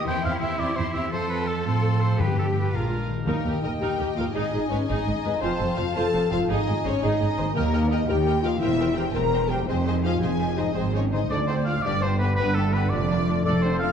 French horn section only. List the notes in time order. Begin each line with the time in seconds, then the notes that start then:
3.26 A#3
3.62 D#4
3.80 G4
4.17 F4
4.34 D#4
4.69 C#4
4.88 D#4
5.42 C4
5.78 F4
5.96 A4
6.31 F4
6.50 D#4
6.85 C#4
7.02 D#4
7.55 A#3
7.89 D#4
8.09 G4
8.43 F4
8.59 E4
8.96 G4
9.14 A#4
9.50 G4
9.67 C4
10.03 F4
10.20 G#4
10.58 D#4
10.75 C4
10.93 C#4
11.11 D#4
11.30 D4
11.49 C4
11.66 F4
11.84 D4
12.02 C4
12.21 B3
12.38 B3
12.56 A3
12.76 B3
12.93 D4
13.46 D4
13.63 C4
13.82 F4